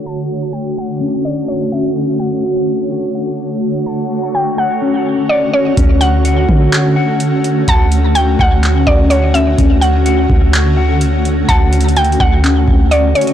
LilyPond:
<<
  \new Staff \with { instrumentName = "Synth pluck" } { \time 4/4 \key d \major \tempo 4 = 126 a''4 g''8 fis''4 d''8 cis''8 e''8 | r8 fis''4. r2 | a''4 g''8 fis''4. d''8 cis''8 | r8 fis''4. r2 |
a''4 g''8 fis''4 d''8 cis''8 e''8 | r8 fis''4. r2 | a''4 g''8 fis''4. d''8 cis''8 | }
  \new Staff \with { instrumentName = "Synth texture" } { \time 4/4 \key d \major <d' cis'' fis''>1~ | <d' cis'' fis''>1~ | <d' cis'' fis''>1 | r1 |
r1 | r1 | r1 | }
  \new Staff \with { instrumentName = "Clean electric guitar" } { \time 4/4 \key d \major <fis' fis''>4 fis'8 fis''8 cis'4 fis''8 cis'8 | cis'8 fis'8 fis''4 fis'8 fis''4. | fis''4 fis'8 fis''8 cis'4 fis''8 cis'8 | cis'8 fis'8 fis''4 fis'8 fis''4. |
fis''4 fis'8 fis''8 cis'4 fis''8 cis'8 | cis'8 fis'8 fis''4 fis'8 fis''4. | fis''4 fis'8 fis''8 cis'4 fis''8 cis'8 | }
  \new Staff \with { instrumentName = "Ambient pad" } { \time 4/4 \key d \major <d a fis' cis''>1~ | <d a fis' cis''>1~ | <d a fis' cis''>1 | <d a cis' fis'>1~ |
<d a cis' fis'>1~ | <d a cis' fis'>1~ | <d a cis' fis'>1 | }
  \new Staff \with { instrumentName = "808-style bass" } { \clef bass \time 4/4 \key d \major r1 | r1 | r1 | d,4. d2~ d8 |
d,4. d,4 d,4. | d,4. d,2~ d,8 | d,4. d,4 d,4 r8 | }
  \new DrumStaff \with { instrumentName = "Drums" } \drummode { \time 4/4 r4 r4 r4 r4 | r4 r4 r4 r4 | r4 r4 r4 r4 | <hh bd>8 hh8 hh8 bd8 <hc hh>4 hh8 hh8 |
<hh bd>8 hh8 hh8 bd8 <hc hh>8 bd8 hh8 hh8 | <hh bd>8 hh8 hh8 bd8 <hc hh>4 hh8 hh8 | \tuplet 3/2 { <hh bd>16 r16 r16 hh16 hh16 hh16 hh16 hh16 hh16 bd16 r16 r16 } <hc hh>8 bd8 hh8 hh32 hh32 hh16 | }
>>